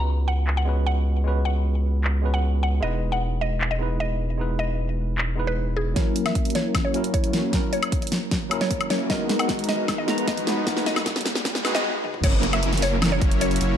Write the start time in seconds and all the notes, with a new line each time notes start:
Already playing: C#2 G#3 B3 C#4 F#4 B4
0.00 A#5
0.28 F#5
0.47 clap
0.57 F#5
0.65 G#3 B3 C#4 F#4 B4
0.86 F#5
1.24 G#3 B3 C#4 F#4
1.28 B4
1.45 F#5
2.04 clap
2.22 G#3 B3 C#4 F#4
2.26 B4
2.34 F#5
2.63 F#5
2.80 E1 G#3 B3 D#4 E4 D#5
2.84 B4
3.12 F#5
3.41 D#5
3.61 clap
3.71 D#5
3.78 G#3 B3 D#4 E4
3.82 B4
4.00 D#5
4.37 G#3 B3 D#4 E4
4.41 B4
4.59 D#5
5.18 clap
5.35 G#3 B3 D#4 E4
5.39 B4
5.47 B4
5.77 G#4
5.94 F#3 A#3 C#4 E4 A#4 C#5, kick, snare, closed hi-hat, riser
6.16 closed hi-hat
6.26 E5, snare, closed hi-hat, high woodblock
6.35 kick, closed hi-hat
6.45 closed hi-hat
6.50 closed hi-hat
6.55 C#5, snare, closed hi-hat
6.75 kick, snare, closed hi-hat, high woodblock
6.85 C#5
6.92 F#3 A#3 C#4 E4 C#5, closed hi-hat
6.96 A#4
7.04 closed hi-hat
7.14 C#5, kick, closed hi-hat
7.24 closed hi-hat
7.33 F#3 A#3 C#4 E4 C#5, snare, closed hi-hat
7.51 F#3 A#3 C#4 E4 C#5, kick, snare, closed hi-hat
7.55 A#4
7.73 C#5, closed hi-hat
7.83 closed hi-hat, high woodblock
7.92 kick, closed hi-hat
8.02 closed hi-hat
8.07 closed hi-hat
8.12 snare, closed hi-hat
8.31 kick, snare, closed hi-hat
8.49 F#3 A#3 C#4 E4, closed hi-hat, high woodblock
8.53 A#4
8.61 C#5, snare, closed hi-hat
8.71 kick, closed hi-hat
8.81 closed hi-hat, high woodblock
8.90 F#3 A#3 C#4 E4 A#4 C#5, snare, closed hi-hat
9.08 G#3 B3 D#4 F#4 A#4 D#5, kick, snare, closed hi-hat
9.12 A#4
9.29 snare, closed hi-hat
9.39 F#5, closed hi-hat, high woodblock
9.49 kick, snare, closed hi-hat
9.59 closed hi-hat
9.64 closed hi-hat
9.69 D#5, snare, closed hi-hat
9.88 kick, snare, closed hi-hat, high woodblock
9.98 D#5
10.06 G#3 B3 D#4 F#4 B4 A#5, snare, closed hi-hat
10.18 closed hi-hat
10.28 D#5, kick, snare, closed hi-hat
10.37 closed hi-hat
10.47 G#3 B3 D#4 F#4 B4, snare, closed hi-hat
10.65 G#3 B3 D#4 F#4 B4, kick, snare, closed hi-hat
10.69 A#4
10.77 snare
10.86 D#5, snare, closed hi-hat
10.96 snare, closed hi-hat, high woodblock
11.06 kick, snare, closed hi-hat
11.16 snare, closed hi-hat
11.21 closed hi-hat
11.26 snare, closed hi-hat
11.35 snare
11.45 kick, snare, closed hi-hat
11.55 snare
11.64 G#3 B3 D#4 F#4 G#4 B4, snare, closed hi-hat, high woodblock
11.75 G#3 B3 D#4 F#4 G#4 D#5, snare, closed hi-hat
12.04 high tom
12.14 mid tom
12.24 F#1 F#3 A#3 C#4 E4 A#4 C#5, kick, closed hi-hat, crash, downlifter
12.43 closed hi-hat
12.53 E5, closed hi-hat, high woodblock
12.63 closed hi-hat
12.73 snare, closed hi-hat
12.78 closed hi-hat
12.82 C#5, open hi-hat
13.02 snare, closed hi-hat, high woodblock
13.12 C#5
13.22 F#1 F#3 A#3 C#4 E4 C#5, kick, closed hi-hat
13.31 closed hi-hat
13.41 C#5, closed hi-hat
13.51 closed hi-hat
13.56 closed hi-hat
13.61 F#1 F#3 A#3 C#4 E4 C#5, closed hi-hat